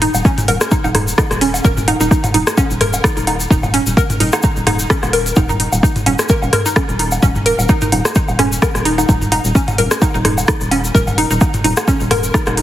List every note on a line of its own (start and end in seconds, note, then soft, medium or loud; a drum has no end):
0.02 0.05 D#4 loud
0.02 open hi-hat medium
0.02 open hi-hat loud
0.14 0.22 D#1 medium
0.14 low woodblock soft
0.14 shaker medium
0.25 0.31 C#4 loud
0.25 kick loud
0.25 shaker medium
0.38 closed hi-hat soft
0.38 mid tom loud
0.38 shaker soft
0.48 0.58 D#1 loud
0.48 0.54 A#4 loud
0.48 open hi-hat medium
0.48 low woodblock soft
0.61 cross-stick medium
0.61 shaker medium
0.71 0.77 D#4 loud
0.71 kick loud
0.71 shaker medium
0.84 1.14 D#1 loud
0.84 0.92 D#4 medium
0.84 low woodblock soft
0.84 shaker soft
0.95 1.04 D#4 medium
0.95 cross-stick medium
0.95 mid tom medium
0.95 open hi-hat medium
1.08 shaker medium
1.18 1.22 D#4 loud
1.18 kick loud
1.18 cross-stick loud
1.18 low woodblock soft
1.18 shaker medium
1.31 1.60 D#1 medium
1.31 cross-stick medium
1.31 open hi-hat soft
1.31 shaker soft
1.41 1.47 C#4 loud
1.41 open hi-hat medium
1.54 closed hi-hat soft
1.54 low woodblock soft
1.54 shaker medium
1.64 1.95 D#1 loud
1.64 1.71 A#4 loud
1.64 kick loud
1.64 shaker medium
1.77 mid tom medium
1.77 shaker soft
1.88 1.94 D#4 loud
1.88 open hi-hat medium
1.88 open hi-hat loud
1.88 low woodblock soft
2.00 2.08 D#1 medium
2.00 2.08 D#4 medium
2.00 shaker medium
2.11 2.20 D#4 medium
2.11 kick loud
2.11 shaker medium
2.24 closed hi-hat soft
2.24 mid tom loud
2.24 low woodblock soft
2.24 shaker soft
2.34 2.44 D#1 loud
2.34 2.38 D#4 loud
2.34 open hi-hat medium
2.34 open hi-hat loud
2.47 cross-stick medium
2.47 closed hi-hat soft
2.47 shaker medium
2.57 2.64 C#4 loud
2.57 kick loud
2.57 low woodblock soft
2.57 shaker medium
2.70 3.00 D#1 medium
2.70 shaker soft
2.81 2.87 A#4 loud
2.81 cross-stick medium
2.81 mid tom medium
2.81 open hi-hat medium
2.81 open hi-hat loud
2.93 low woodblock soft
2.93 shaker medium
3.04 3.10 D#4 loud
3.04 kick loud
3.04 cross-stick loud
3.04 shaker medium
3.17 3.46 D#1 medium
3.17 3.24 D#4 medium
3.17 open hi-hat soft
3.17 shaker soft
3.27 3.36 D#4 medium
3.27 open hi-hat medium
3.27 open hi-hat loud
3.27 low woodblock soft
3.40 shaker medium
3.50 3.81 D#1 loud
3.50 3.54 D#4 loud
3.50 kick loud
3.50 shaker medium
3.63 mid tom medium
3.63 low woodblock soft
3.63 shaker soft
3.74 3.80 C#4 loud
3.74 open hi-hat medium
3.74 open hi-hat loud
3.86 3.94 D#1 medium
3.86 shaker medium
3.97 4.03 A#4 loud
3.97 kick loud
3.97 low woodblock soft
3.97 shaker medium
4.10 closed hi-hat soft
4.10 mid tom medium
4.10 shaker soft
4.20 4.30 D#1 loud
4.20 4.26 D#4 loud
4.20 open hi-hat medium
4.20 open hi-hat loud
4.33 4.40 D#4 medium
4.33 cross-stick medium
4.33 low woodblock medium
4.33 shaker medium
4.42 4.53 D#4 medium
4.42 kick loud
4.42 shaker medium
4.56 4.86 D#1 medium
4.56 shaker soft
4.67 4.70 D#4 loud
4.67 cross-stick medium
4.67 mid tom medium
4.67 open hi-hat medium
4.67 open hi-hat loud
4.67 low woodblock soft
4.79 shaker medium
4.90 4.96 C#4 loud
4.90 kick loud
4.90 cross-stick loud
4.90 shaker medium
5.03 5.32 D#1 medium
5.03 cross-stick medium
5.03 open hi-hat soft
5.03 low woodblock soft
5.03 shaker soft
5.13 5.19 A#4 loud
5.13 open hi-hat medium
5.13 open hi-hat loud
5.26 closed hi-hat soft
5.26 shaker medium
5.36 5.67 D#1 loud
5.36 5.43 D#4 loud
5.36 kick loud
5.36 low woodblock soft
5.36 shaker medium
5.49 5.57 D#4 medium
5.49 mid tom medium
5.49 shaker soft
5.60 5.69 D#4 medium
5.60 open hi-hat medium
5.60 open hi-hat loud
5.72 5.80 D#1 medium
5.72 low woodblock soft
5.72 shaker medium
5.83 5.87 D#4 loud
5.83 kick loud
5.83 shaker medium
5.96 closed hi-hat soft
5.96 mid tom medium
5.96 shaker soft
6.06 6.16 D#1 loud
6.06 6.12 C#4 loud
6.06 open hi-hat medium
6.06 open hi-hat loud
6.06 low woodblock soft
6.19 cross-stick medium
6.19 closed hi-hat soft
6.19 shaker medium
6.29 6.36 A#4 loud
6.29 kick loud
6.29 shaker medium
6.42 6.50 D#1 loud
6.42 low woodblock soft
6.42 shaker soft
6.53 6.62 A#4 medium
6.53 cross-stick medium
6.53 mid tom medium
6.53 open hi-hat medium
6.53 open hi-hat loud
6.66 6.69 D#4 medium
6.66 shaker medium
6.76 6.82 C#4 medium
6.76 kick loud
6.76 cross-stick loud
6.76 low woodblock soft
6.76 shaker medium
6.89 7.18 D#1 medium
6.89 open hi-hat soft
6.89 shaker soft
6.99 7.08 D#4 medium
6.99 open hi-hat medium
6.99 open hi-hat loud
7.11 low woodblock soft
7.11 shaker medium
7.22 7.53 D#1 loud
7.22 7.29 C#4 loud
7.22 kick loud
7.22 low woodblock soft
7.22 shaker medium
7.35 mid tom medium
7.35 shaker soft
7.46 7.52 A#4 loud
7.46 open hi-hat medium
7.46 open hi-hat loud
7.59 7.66 D#1 medium
7.59 low woodblock soft
7.59 shaker medium
7.69 7.75 D#4 loud
7.69 kick loud
7.69 shaker medium
7.81 7.89 D#4 medium
7.81 closed hi-hat soft
7.81 mid tom medium
7.81 shaker soft
7.92 8.02 D#1 loud
7.92 8.01 D#4 medium
7.92 open hi-hat medium
7.92 low woodblock soft
8.05 cross-stick medium
8.05 shaker medium
8.15 8.19 D#4 loud
8.15 kick loud
8.15 shaker medium
8.28 8.58 D#1 medium
8.28 low woodblock soft
8.28 shaker soft
8.39 8.45 C#4 loud
8.39 cross-stick medium
8.39 mid tom medium
8.39 open hi-hat medium
8.52 shaker medium
8.62 8.68 A#4 loud
8.62 kick loud
8.62 cross-stick loud
8.62 low woodblock soft
8.62 shaker medium
8.75 9.04 D#1 medium
8.75 cross-stick medium
8.75 open hi-hat soft
8.75 shaker soft
8.85 8.91 D#4 loud
8.85 open hi-hat medium
8.98 9.06 D#4 medium
8.98 closed hi-hat soft
8.98 low woodblock soft
8.98 shaker medium
9.09 9.39 D#1 loud
9.09 9.18 D#4 medium
9.09 kick loud
9.09 shaker medium
9.21 mid tom medium
9.21 shaker soft
9.32 9.35 D#4 loud
9.32 open hi-hat medium
9.32 low woodblock soft
9.45 9.52 D#1 medium
9.45 shaker medium
9.55 9.61 C#4 loud
9.55 kick loud
9.55 shaker medium
9.68 closed hi-hat soft
9.68 mid tom medium
9.68 low woodblock soft
9.68 shaker soft
9.78 9.88 D#1 loud
9.78 9.84 A#4 loud
9.78 open hi-hat medium
9.91 cross-stick medium
9.91 closed hi-hat soft
9.91 shaker medium
10.02 10.08 D#4 loud
10.02 kick loud
10.02 low woodblock soft
10.02 shaker medium
10.14 10.44 D#1 medium
10.14 10.22 D#4 medium
10.14 shaker soft
10.25 10.34 D#4 medium
10.25 cross-stick medium
10.25 mid tom medium
10.25 open hi-hat medium
10.38 low woodblock soft
10.38 shaker medium
10.48 10.52 D#4 loud
10.48 kick loud
10.48 cross-stick loud
10.48 shaker medium
10.61 10.90 D#1 medium
10.61 open hi-hat soft
10.61 shaker soft
10.71 10.77 C#4 loud
10.71 open hi-hat medium
10.71 low woodblock soft
10.84 shaker medium
10.95 11.25 D#1 loud
10.95 11.01 A#4 loud
10.95 kick loud
10.95 shaker medium
11.07 mid tom medium
11.07 low woodblock soft
11.07 shaker soft
11.18 11.24 D#4 loud
11.18 open hi-hat medium
11.31 11.38 D#1 medium
11.31 11.38 D#4 medium
11.31 shaker medium
11.41 11.50 D#4 medium
11.41 kick loud
11.41 low woodblock soft
11.41 shaker medium
11.54 closed hi-hat soft
11.54 mid tom medium
11.54 shaker soft
11.64 11.74 D#1 loud
11.64 11.68 D#4 loud
11.64 open hi-hat medium
11.77 cross-stick medium
11.77 low woodblock soft
11.77 shaker medium
11.87 11.94 C#4 loud
11.87 kick loud
11.87 shaker medium
12.00 12.30 D#1 medium
12.00 shaker soft
12.11 12.17 A#4 loud
12.11 cross-stick medium
12.11 mid tom medium
12.11 open hi-hat medium
12.11 low woodblock soft
12.23 shaker medium
12.34 12.40 D#4 loud
12.34 kick loud
12.34 cross-stick loud
12.34 shaker medium
12.46 12.62 D#1 medium
12.46 12.54 D#4 medium
12.46 cross-stick medium
12.46 open hi-hat soft
12.46 low woodblock soft
12.46 shaker soft
12.57 12.62 D#4 medium
12.57 open hi-hat medium